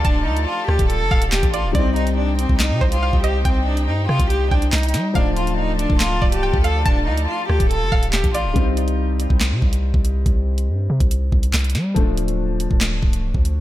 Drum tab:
HH |x-----x-------x-x-----x-x-x-x---|x---x-x-----x---x-----x-----x---|x-----x-------x-x-----x-xxxxx---|x---x-x-----x---x-----x-----x---|
CP |------------------------x-------|----------------x---------------|------------------------x-------|----------------x---------------|
SD |------------r-----------o-------|----------------o---------------|------------r-----------o---o---|----------------o---------------|
BD |o-------------o-----o-----o-----|o-------------o-----o-----o-----|o-------------o-----o-----------|o-------------o-----o-----o-----|

HH |x-----x-------x-x-----x-x-x-x---|x---x-x-----x---x-----x-----x---|x-----x-------x-x-----x-xxxxx---|x---x-x-----x---x-----x-----x---|
CP |------------------------x-------|----------------x---------------|------------------------x-------|----------------x---------------|
SD |------------r-----------o-------|----------------o---------------|------------------------o---o---|----------------o---------------|
BD |o-------------o-----o-----o-----|o-------------o-----o-----o-----|o-------------o-----o-----------|o-------------o-----o-----o-----|